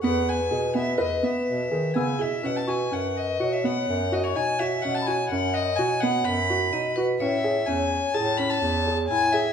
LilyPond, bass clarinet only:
\new Staff \with { instrumentName = "Bass clarinet" } { \clef bass \time 5/4 \key b \mixolydian \tempo 4 = 126 e,4 b,4 e,8 r8 b,8 dis8 cis8 b,8 | b,4 fis,4 b,4 fis,4 b,4 | b,4 fis,4 b,4 fis,4 b,4 | a,4 e,4 a,4 e,4 a,4 | }